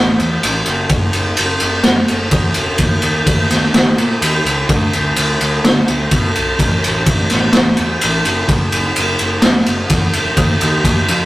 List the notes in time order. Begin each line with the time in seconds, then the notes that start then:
Already playing: A1
0.20 E2, ride
0.43 A1, ride
0.66 F#1, ride
0.89 F#1, kick, ride
1.13 F#1, ride
1.37 F#1, ride
1.60 F#1, ride
1.84 F#2, snare, ride
2.08 F#1, ride
2.31 E2, kick, ride
2.54 E1, ride
2.78 D#2, kick, ride
3.02 D#2, ride
3.27 D#2, kick, ride
3.50 D#2, snare, ride
3.74 D#2, snare, ride
3.98 A#2, ride
4.21 D#2, ride
4.45 C#2, ride
4.69 D2, kick, ride
4.93 D2, ride
5.16 D2, ride
5.41 D2, ride
5.64 D3, snare, ride
5.88 D2, ride
6.11 B2, kick, ride
6.35 B1, ride
6.59 A1, kick, ride
6.84 A1, ride
7.06 A1, kick, ride
7.30 A1, snare, ride
7.53 A1, snare, ride
7.77 E2, ride
8.01 A1, ride
8.25 F#1, ride
8.49 F#1, kick, ride
8.72 F#1, ride
8.96 F#1, ride
9.19 F#1, ride
9.42 F#2, snare, ride
9.66 F#1, ride
9.90 E2, kick, ride
10.13 E1, ride
10.37 D#2, kick, ride
10.61 D#2, ride
10.84 D#2, kick, ride
11.08 F2, ride